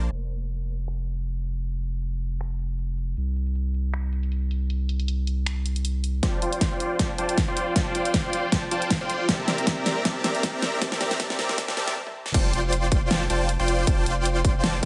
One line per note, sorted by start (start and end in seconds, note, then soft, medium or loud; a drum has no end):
0.11 3.15 F1 medium
0.50 closed hi-hat medium
0.69 closed hi-hat medium
0.88 finger snap medium
1.07 closed hi-hat medium
1.17 closed hi-hat medium
1.26 closed hi-hat medium
1.45 closed hi-hat medium
1.64 closed hi-hat medium
1.83 closed hi-hat medium
1.94 closed hi-hat medium
2.02 closed hi-hat medium
2.22 closed hi-hat medium
2.41 finger snap medium
2.41 closed hi-hat medium
2.60 closed hi-hat medium
2.70 closed hi-hat medium
2.79 closed hi-hat medium
2.98 closed hi-hat medium
3.17 6.21 C2 medium
3.17 closed hi-hat medium
3.36 closed hi-hat medium
3.47 closed hi-hat medium
3.55 closed hi-hat medium
3.74 closed hi-hat medium
3.94 finger snap loud
3.94 closed hi-hat medium
4.13 closed hi-hat medium
4.23 closed hi-hat medium
4.32 closed hi-hat medium
4.51 closed hi-hat medium
4.70 closed hi-hat medium
4.89 closed hi-hat medium
5.00 closed hi-hat medium
5.08 closed hi-hat medium
5.27 closed hi-hat medium
5.46 finger snap medium
5.46 closed hi-hat medium
5.66 closed hi-hat medium
5.76 closed hi-hat medium
5.85 closed hi-hat medium
6.04 closed hi-hat medium
6.23 6.40 F1 medium
6.23 6.40 F4 medium
6.23 6.40 C5 medium
6.23 6.40 D5 medium
6.23 6.40 G5 medium
6.23 6.40 A5 loud
6.23 kick medium
6.23 snare soft
6.23 closed hi-hat medium
6.42 6.98 F1 medium
6.42 6.97 F4 medium
6.42 6.97 C5 medium
6.42 6.97 D5 medium
6.42 6.97 G5 medium
6.42 6.97 C6 medium
6.42 closed hi-hat medium
6.53 closed hi-hat medium
6.61 kick medium
6.61 snare soft
6.61 closed hi-hat medium
6.80 closed hi-hat medium
6.99 7.17 F1 medium
6.99 7.11 F4 medium
6.99 7.11 C5 medium
6.99 7.11 D5 medium
6.99 7.11 G5 medium
6.99 7.11 A5 medium
6.99 kick medium
6.99 snare medium
6.99 closed hi-hat medium
7.18 7.46 F1 loud
7.18 7.37 F4 medium
7.18 7.37 C5 medium
7.18 7.37 D5 medium
7.18 7.37 G5 medium
7.18 7.37 A5 medium
7.18 closed hi-hat medium
7.29 closed hi-hat medium
7.38 kick medium
7.38 snare medium
7.38 closed hi-hat medium
7.48 7.74 F1 loud
7.48 7.74 F4 medium
7.48 7.74 C5 medium
7.48 7.74 D5 medium
7.48 7.74 G5 medium
7.48 7.74 C6 medium
7.57 closed hi-hat medium
7.76 7.93 F1 medium
7.76 7.93 F4 medium
7.76 7.93 C5 medium
7.76 7.93 D5 medium
7.76 7.93 G5 medium
7.76 7.93 A5 loud
7.76 kick medium
7.76 snare medium
7.76 closed hi-hat medium
7.95 8.51 F1 medium
7.95 8.50 F4 medium
7.95 8.50 C5 medium
7.95 8.50 D5 medium
7.95 8.50 G5 medium
7.95 8.50 C6 medium
7.95 closed hi-hat medium
8.05 closed hi-hat medium
8.14 kick loud
8.14 snare medium
8.14 closed hi-hat medium
8.33 closed hi-hat medium
8.52 8.70 F1 medium
8.52 8.64 F4 medium
8.52 8.64 C5 medium
8.52 8.64 D5 medium
8.52 8.64 G5 medium
8.52 8.64 A5 medium
8.52 kick medium
8.52 snare medium
8.52 closed hi-hat medium
8.71 8.99 F1 medium
8.71 8.90 F4 medium
8.71 8.90 C5 medium
8.71 8.90 D5 medium
8.71 8.90 G5 medium
8.71 8.90 A5 medium
8.71 closed hi-hat medium
8.82 closed hi-hat medium
8.90 kick medium
8.90 snare medium
8.90 closed hi-hat medium
9.01 9.27 F2 medium
9.01 9.27 F4 medium
9.01 9.27 C5 medium
9.01 9.27 D5 medium
9.01 9.27 G5 medium
9.01 9.27 C6 medium
9.10 closed hi-hat medium
9.29 9.46 C2 loud
9.29 9.46 C4 medium
9.29 9.46 G4 medium
9.29 9.46 A#4 medium
9.29 9.46 D5 medium
9.29 9.46 E5 medium
9.29 9.46 A5 medium
9.29 kick loud
9.29 snare medium
9.29 closed hi-hat medium
9.48 10.03 C2 medium
9.48 10.03 C4 medium
9.48 10.03 G4 medium
9.48 10.03 A#4 medium
9.48 10.03 D5 medium
9.48 10.03 E5 medium
9.48 10.03 A#5 medium
9.48 snare medium
9.48 closed hi-hat medium
9.58 closed hi-hat medium
9.67 kick loud
9.67 snare medium
9.67 closed hi-hat medium
9.86 snare medium
9.86 closed hi-hat medium
10.05 10.22 C2 loud
10.05 10.22 C4 medium
10.05 10.22 G4 medium
10.05 10.22 A#4 medium
10.05 10.22 D5 medium
10.05 10.22 E5 medium
10.05 10.22 A5 medium
10.05 kick medium
10.05 snare medium
10.05 closed hi-hat medium
10.24 10.80 C2 loud
10.24 10.79 C4 medium
10.24 10.79 G4 medium
10.24 10.79 A#4 medium
10.24 10.79 D5 medium
10.24 10.79 E5 medium
10.24 10.79 A#5 medium
10.24 snare medium
10.24 closed hi-hat medium
10.35 closed hi-hat medium
10.43 kick loud
10.43 snare medium
10.43 closed hi-hat medium
10.62 snare medium
10.62 closed hi-hat medium
10.82 10.99 C4 medium
10.82 10.99 G4 medium
10.82 10.99 E5 medium
10.82 kick loud
10.82 snare medium
10.82 closed hi-hat medium
10.92 snare medium
11.01 11.18 C4 medium
11.01 11.18 G4 medium
11.01 11.18 A#4 medium
11.01 11.18 D5 medium
11.01 11.18 E5 medium
11.01 11.18 A#5 medium
11.01 snare medium
11.01 closed hi-hat medium
11.11 snare medium
11.11 closed hi-hat medium
11.20 11.37 C4 medium
11.20 11.37 G4 medium
11.20 11.37 A#4 medium
11.20 11.37 D5 medium
11.20 11.37 E5 medium
11.20 11.37 A5 loud
11.20 kick loud
11.20 snare medium
11.20 closed hi-hat medium
11.30 snare medium
11.39 11.57 C4 medium
11.39 11.57 G4 medium
11.39 11.57 A#4 medium
11.39 11.57 D5 medium
11.39 11.57 E5 medium
11.39 11.57 A#5 medium
11.39 snare loud
11.39 closed hi-hat medium
11.49 snare medium
11.58 11.75 C4 medium
11.58 11.75 G4 medium
11.58 11.75 A#4 medium
11.58 11.75 D5 medium
11.58 11.75 A5 loud
11.58 kick medium
11.58 snare loud
11.58 closed hi-hat medium
11.68 snare medium
11.77 11.94 C4 medium
11.77 11.94 G4 medium
11.77 11.94 A#4 medium
11.77 11.94 D5 medium
11.77 11.94 E5 medium
11.77 11.94 A5 loud
11.77 snare loud
11.77 closed hi-hat medium
11.88 snare medium
11.88 closed hi-hat medium
11.96 high tom medium
12.07 high tom medium
12.26 snare medium
12.34 12.52 F1 loud
12.34 12.51 F4 medium
12.34 12.51 C5 medium
12.34 12.51 D5 medium
12.34 12.51 G5 medium
12.34 12.51 A5 loud
12.34 kick loud
12.34 closed hi-hat medium
12.34 crash loud
12.53 13.09 F1 medium
12.53 13.09 F4 medium
12.53 13.09 C5 medium
12.53 13.09 D5 medium
12.53 13.09 G5 medium
12.53 13.09 C6 medium
12.53 closed hi-hat medium
12.73 closed hi-hat medium
12.92 kick loud
12.92 closed hi-hat medium
13.11 13.28 F1 loud
13.11 13.23 F4 medium
13.11 13.23 C5 medium
13.11 13.23 D5 medium
13.11 13.23 G5 medium
13.11 13.23 A5 medium
13.11 snare loud
13.11 closed hi-hat medium
13.30 13.57 F1 loud
13.30 13.48 F4 medium
13.30 13.48 C5 medium
13.30 13.48 D5 medium
13.30 13.48 G5 medium
13.30 13.48 A5 medium
13.30 closed hi-hat medium
13.49 closed hi-hat medium
13.59 13.86 F1 loud
13.59 13.85 F4 medium
13.59 13.85 C5 medium
13.59 13.85 D5 medium
13.59 13.85 G5 medium
13.59 13.85 C6 medium
13.68 closed hi-hat medium
13.87 14.05 F1 loud
13.87 14.04 F4 medium
13.87 14.04 C5 medium
13.87 14.04 D5 medium
13.87 14.04 G5 medium
13.87 14.04 A5 loud
13.87 kick loud
13.87 closed hi-hat medium
14.06 14.62 F1 loud
14.06 14.62 F4 medium
14.06 14.62 C5 medium
14.06 14.62 D5 medium
14.06 14.62 G5 medium
14.06 14.62 C6 medium
14.06 closed hi-hat medium
14.25 closed hi-hat medium
14.45 kick loud
14.45 closed hi-hat medium
14.64 14.81 F1 loud
14.64 14.76 F4 medium
14.64 14.76 C5 medium
14.64 14.76 D5 medium
14.64 14.76 G5 medium
14.64 14.76 A5 medium
14.64 snare loud
14.64 closed hi-hat medium